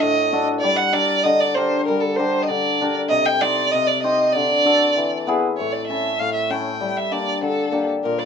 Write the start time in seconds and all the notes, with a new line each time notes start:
0.00 A2 D#5
0.33 D4 F#4 A4
0.60 G3 D5
0.76 F#5
0.93 D4 G4 A#4 D5
1.23 D3 D#5
1.40 D5
1.55 D4 G4 A#4 C5
1.86 G3 A#4
2.00 A4
2.16 D4 G4 A#4 C5
2.43 D#5
2.48 D3 D5
2.81 D4 G4 A#4
3.09 C3 D#5
3.26 G5
3.41 D#4 G4 C5 D5
3.72 C3 D#5
3.87 D5
4.03 D#4 G4 C5 D#5
4.33 D3 D5
4.65 D4 F#4 A4
4.97 E3
5.27 B3 E4 G#4
5.57 A2 C#5
5.72 D5
5.87 C#4 E4 A4 E5
6.19 A2 F5
6.34 E5
6.50 C#4 E4 A4 G5
6.81 G3
6.97 E5
7.11 A#3 D4 G4 D5
7.42 D3 A4
7.72 A#3 D4 G4
8.04 A#2 A#4
8.19 D5